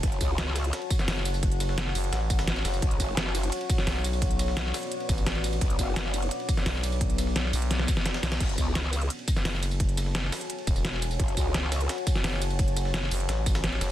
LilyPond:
<<
  \new Staff \with { instrumentName = "Ambient pad" } { \time 4/4 \key fis \minor \tempo 4 = 172 << { <fis' fis'' a''>1~ | <fis' fis'' a''>1 | <b d''>1~ | <b d''>1~ |
<b d''>1~ | <b d''>1 | <fis' gis'' a''>1~ | <fis' gis'' a''>1~ |
<fis' gis'' a''>1~ | <fis' gis'' a''>1 | } \\ { cis''1~ | cis''1~ | cis''1~ | cis''1~ |
cis''1~ | cis''1 | cis''1~ | cis''1~ |
cis''1~ | cis''1 | } >> }
  \new Staff \with { instrumentName = "Wobble bass" } { \clef bass \time 4/4 \key fis \minor fis,,8 cis,4. r2 | r1 | b,,8 fis,,4. r2 | r1 |
b,,8 fis,,4. r2 | r1 | fis,,8 cis,4. r2 | r1 |
fis,,8 cis,4. r2 | r1 | }
  \new Staff \with { instrumentName = "FM bass" } { \clef bass \time 4/4 \key fis \minor r2. fis,,4~ | fis,,4. fis,,8 a,,4. fis,,8 | r2. b,,4~ | b,,4. r4 a,,4. |
r2. b,,4~ | b,,4. b,,4 r4 b,,8 | r2. fis,,4~ | fis,,4. r4 e,,4. |
r2. fis,,4~ | fis,,4. fis,,8 a,,4. fis,,8 | }
  \new DrumStaff \with { instrumentName = "Drums" } \drummode { \time 4/4 <hh bd cymr>16 hh16 <hh bd cymr tamb>8 <hh cymr sn>8 <hh cymr sn tamb>16 <hh cymr>16 <hh cymr sn>16 cymr16 <hh bd cymr tamb>16 <sn tamb>16 <hh hho sn>8 <hh cymr tamb>16 tamb16 | <hh bd cymr>16 hh16 <hh cymr sn tamb>16 sn16 <hh cymr sn>8 <hho cymr tamb>16 <hh cymr>16 <hh cymr sn>8 <hh bd cymr tamb>16 <cymr sn tamb>16 <hh sn>16 cymr16 <hh cymr sn tamb>16 tamb16 | <hh bd cymr>16 hh16 <hh bd cymr tamb>8 <hh cymr sn>8 <hh cymr tamb>16 <hh cymr>16 <hh cymr>16 cymr16 <hh bd cymr tamb>16 <sn tamb>16 <hh hho sn>8 <hh cymr tamb>16 tamb16 | <hh bd cymr>16 hh16 <hh cymr sn tamb>16 sn16 <hh cymr sn>8 <hho cymr sn tamb>16 hh16 <hh cymr>16 cymr16 <hh bd cymr tamb>16 <cymr tamb>16 <hh cymr sn>16 cymr16 <hh cymr tamb>16 <cymr tamb>16 |
<hh bd cymr>16 hh16 <hh bd cymr tamb>8 <hh cymr sn>8 <hh cymr tamb>16 <hh cymr>16 <hh cymr>16 cymr16 <hh bd cymr tamb>16 <sn tamb>16 <hh hho sn>8 <hh cymr tamb>16 tamb16 | <hh bd cymr>16 hh16 <hh cymr sn tamb>16 sn16 <hh cymr sn>8 <hho cymr tamb>16 <hh cymr>16 <hh cymr sn>16 sn16 <hh bd cymr tamb>16 <sn tamb>16 <hh cymr sn>16 <cymr sn>16 <hh cymr sn tamb>16 <cymr sn tamb>16 | <cymc hh bd cymr>16 hh16 <hh bd cymr tamb>8 <hh cymr sn>8 <hh cymr tamb>16 <hh cymr>16 <hh cymr>16 cymr16 <hh bd cymr tamb>16 <sn tamb>16 <hh hho sn>8 <hh cymr tamb>16 tamb16 | <hh bd cymr>16 hh16 <hh cymr sn tamb>16 sn16 <hh cymr sn>8 <hho cymr sn tamb>16 hh16 <hh cymr>16 cymr16 <hh bd cymr tamb>16 <cymr tamb>16 <hh cymr sn>16 cymr16 <hh cymr tamb>16 <cymr tamb>16 |
<hh bd cymr>16 hh16 <hh bd cymr tamb>8 <hh cymr sn>8 <hh cymr sn tamb>16 <hh cymr>16 <hh cymr sn>16 cymr16 <hh bd cymr tamb>16 <sn tamb>16 <hh hho sn>8 <hh cymr tamb>16 tamb16 | <hh bd cymr>16 hh16 <hh cymr sn tamb>16 sn16 <hh cymr sn>8 <hho cymr tamb>16 <hh cymr>16 <hh cymr sn>8 <hh bd cymr tamb>16 <cymr sn tamb>16 <hh sn>16 cymr16 <hh cymr sn tamb>8 | }
>>